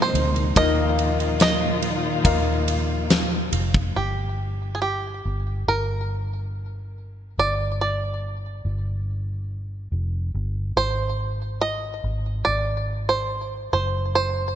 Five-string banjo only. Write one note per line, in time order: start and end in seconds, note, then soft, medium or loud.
0.02 0.57 C5 medium
0.57 1.41 D#5 loud
1.42 3.50 D#5 medium
3.96 4.74 G4 medium
4.75 4.81 G#4 soft
4.82 5.68 G4 medium
5.68 7.39 A#4 medium
7.39 7.80 D5 medium
7.81 10.31 D5 medium
10.77 11.61 C5 medium
11.61 12.42 D#5 medium
12.45 13.09 D5 medium
13.09 13.72 C5 medium
13.73 14.14 C5 medium
14.15 14.55 C5 medium